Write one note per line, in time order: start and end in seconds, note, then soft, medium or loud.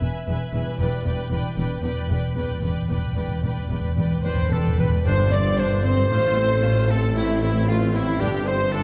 0.01 0.09 E1 soft
0.01 0.10 E2 soft
0.01 0.26 B4 soft
0.01 0.26 E5 soft
0.01 0.28 G#5 soft
0.27 0.36 E1 soft
0.27 0.36 E2 soft
0.27 0.52 B4 soft
0.27 0.52 E5 soft
0.27 0.55 G#5 soft
0.53 0.61 E1 medium
0.53 0.62 E2 medium
0.53 0.78 B4 soft
0.53 0.79 E5 soft
0.53 0.80 G#5 soft
0.62 4.52 E3 soft
0.66 4.56 G3 soft
0.71 4.61 D4 soft
0.75 4.65 B4 soft
0.75 1.04 B4 soft
0.80 0.88 E1 medium
0.80 0.86 E2 soft
0.80 0.88 E2 medium
0.80 1.05 D5 medium
0.80 1.05 G5 soft
0.87 0.94 E2 soft
0.95 1.01 E2 soft
1.02 1.08 E2 soft
1.02 1.13 E2 medium
1.02 1.31 B4 soft
1.06 1.14 E1 medium
1.06 1.16 E2 soft
1.06 1.31 D5 soft
1.06 1.32 G5 soft
1.17 1.23 E2 soft
1.25 1.31 E2 soft
1.31 1.40 E1 medium
1.31 1.39 E2 medium
1.31 1.39 E2 soft
1.31 1.57 B4 medium
1.31 1.57 D5 soft
1.31 1.57 G5 medium
1.40 1.46 E2 soft
1.47 1.53 E2 soft
1.54 1.66 E1 medium
1.54 1.61 E2 soft
1.54 1.65 E2 medium
1.58 1.68 E2 soft
1.58 1.84 B4 soft
1.58 1.83 D5 soft
1.58 1.83 G5 medium
1.69 1.76 E2 soft
1.77 1.83 E2 soft
1.83 1.92 E1 medium
1.83 1.91 E2 medium
1.83 1.91 E2 soft
1.83 2.10 B4 medium
1.83 2.09 D5 medium
1.83 2.10 G5 medium
1.92 1.98 E2 soft
1.99 2.06 E2 soft
2.07 2.19 E1 medium
2.07 2.13 E2 soft
2.07 2.18 E2 medium
2.07 2.35 D5 soft
2.11 2.20 E2 soft
2.11 2.36 B4 soft
2.11 2.36 G5 soft
2.21 2.28 E2 soft
2.29 2.35 E2 soft
2.36 2.45 E1 medium
2.36 2.43 E2 soft
2.36 2.45 E2 soft
2.36 2.62 B4 soft
2.36 2.62 D5 soft
2.36 2.63 G5 soft
2.44 2.50 E2 soft
2.51 2.58 E2 soft
2.59 2.71 E1 soft
2.59 2.65 E2 soft
2.59 2.70 E2 soft
2.63 2.73 E2 soft
2.63 2.89 B4 soft
2.63 2.89 D5 soft
2.63 2.89 G5 soft
2.74 2.81 E2 soft
2.82 2.88 E2 soft
2.90 2.98 E1 soft
2.90 2.96 E2 soft
2.90 2.98 E2 medium
2.90 3.16 B4 soft
2.90 3.15 D5 soft
2.90 3.17 G5 soft
2.97 3.04 E2 soft
3.05 3.11 E2 soft
3.13 3.19 E2 soft
3.13 3.24 E2 soft
3.13 3.43 D5 soft
3.17 3.25 E1 soft
3.17 3.27 E2 soft
3.17 3.43 B4 soft
3.17 3.43 G5 soft
3.28 3.34 E2 soft
3.35 3.42 E2 soft
3.43 3.51 E1 soft
3.43 3.51 E2 soft
3.43 3.49 E2 soft
3.43 3.70 B4 soft
3.43 3.70 D5 soft
3.43 3.71 G5 soft
3.51 3.57 E2 soft
3.58 3.65 E2 soft
3.66 3.78 E1 soft
3.66 3.72 E2 medium
3.70 3.78 E2 soft
3.70 3.80 E2 soft
3.70 3.96 B4 soft
3.70 3.96 D5 soft
3.70 3.97 G5 soft
3.81 3.87 E2 medium
3.89 3.95 E2 medium
3.97 4.05 E1 soft
3.97 4.03 E2 medium
3.97 4.05 E2 soft
3.97 4.23 B4 soft
3.97 4.22 D5 soft
3.97 4.23 G5 soft
4.04 4.10 E2 medium
4.12 4.18 E2 medium
4.19 4.26 E2 medium
4.23 4.32 E1 soft
4.23 4.32 E2 soft
4.23 4.34 E2 medium
4.23 4.51 B4 soft
4.23 4.49 C5 medium
4.23 4.50 C5 medium
4.23 4.31 C5 medium
4.23 4.54 C5 medium
4.23 4.51 D5 soft
4.23 4.50 G5 soft
4.35 4.41 E2 medium
4.42 4.49 E2 medium
4.50 4.59 E1 soft
4.50 4.57 E2 medium
4.50 4.60 E2 soft
4.50 4.57 A4 medium
4.50 4.78 A4 medium
4.50 4.79 A4 medium
4.50 4.78 B4 soft
4.50 4.78 D5 soft
4.50 4.78 G5 soft
4.58 4.65 E2 medium
4.66 4.73 E2 medium
4.74 4.86 E1 soft
4.74 4.81 E2 medium
4.74 5.05 B4 medium
4.78 4.86 E2 soft
4.78 4.88 E2 medium
4.78 5.05 B4 medium
4.78 5.05 B4 soft
4.78 4.87 B4 medium
4.78 4.91 B4 medium
4.78 5.06 B4 medium
4.78 5.05 D5 medium
4.78 5.05 G5 soft
4.89 4.96 E2 medium
4.97 5.04 E2 medium
5.03 6.07 G1 medium
5.03 6.07 G2 loud
5.03 5.81 G2 loud
5.03 6.14 G2 medium
5.03 5.30 D4 medium
5.03 5.31 C5 loud
5.03 5.32 C5 loud
5.03 5.31 C5 loud
5.03 5.14 C5 loud
5.03 5.32 C5 loud
5.19 5.96 G3 medium
5.30 5.59 C4 medium
5.30 5.84 D4 medium
5.30 5.57 D5 loud
5.30 5.40 D5 loud
5.30 5.61 D5 loud
5.30 5.59 D5 loud
5.45 5.70 C5 medium
5.58 5.85 D4 medium
5.58 5.66 C5 loud
5.58 5.64 C5 loud
5.58 5.83 C5 loud
5.58 5.85 C5 medium
5.58 6.13 D5 medium
5.71 6.49 C5 medium
5.84 6.11 C4 medium
5.84 6.13 D4 medium
5.84 6.87 C5 loud
5.84 6.88 C5 loud
5.84 6.92 C5 loud
5.97 6.13 G3 medium
6.10 8.22 A1 medium
6.10 8.17 A1 medium
6.10 7.15 A2 medium
6.10 8.17 A2 medium
6.10 6.36 A3 medium
6.10 6.36 F4 medium
6.23 7.02 C4 medium
6.37 6.64 C4 medium
6.37 6.88 F4 medium
6.37 6.64 A4 medium
6.63 6.90 A3 medium
6.63 6.90 F4 medium
6.63 7.18 F5 medium
6.77 7.54 C5 medium
6.89 7.15 C4 medium
6.89 7.18 F4 medium
6.89 6.96 A4 medium
6.89 7.16 A4 loud
6.89 7.16 A4 medium
6.89 7.17 A4 medium
7.03 7.28 C4 medium
7.15 8.23 A2 medium
7.15 7.41 A3 medium
7.15 7.41 C4 medium
7.15 7.21 E4 medium
7.15 7.41 E4 medium
7.15 7.41 E4 loud
7.15 7.41 E4 medium
7.15 7.42 E4 medium
7.29 7.67 C4 medium
7.40 8.07 E3 medium
7.40 7.68 A3 medium
7.40 7.68 C4 medium
7.40 7.67 E4 medium
7.40 7.68 E4 medium
7.40 7.54 E4 loud
7.40 7.70 E4 medium
7.55 7.80 C5 medium
7.68 7.93 A3 medium
7.68 7.94 C4 medium
7.68 7.93 C4 medium
7.68 7.94 F4 medium
7.68 7.94 F4 loud
7.68 7.94 F4 medium
7.68 7.94 F4 loud
7.68 7.77 F4 medium
7.82 8.58 C5 medium
7.93 8.21 A3 medium
7.93 8.21 C4 medium
7.93 8.33 C4 medium
7.93 8.20 E4 medium
7.93 8.06 E4 loud
7.93 8.22 E4 medium
7.93 8.21 E4 medium
8.08 8.23 E3 medium
8.19 8.83 G1 medium
8.19 8.83 G2 medium
8.19 8.45 D4 medium
8.19 8.25 G4 medium
8.19 8.46 G4 loud
8.19 8.46 G4 medium
8.19 8.49 G4 medium
8.19 8.47 G4 medium
8.34 8.83 C4 medium
8.45 8.73 C4 medium
8.45 8.83 D4 medium
8.45 8.51 C5 medium
8.45 8.72 C5 loud
8.45 8.55 C5 medium
8.45 8.74 C5 loud
8.45 8.73 C5 medium
8.60 8.83 C5 medium
8.72 8.83 D4 medium
8.72 8.83 A4 loud
8.72 8.83 D5 medium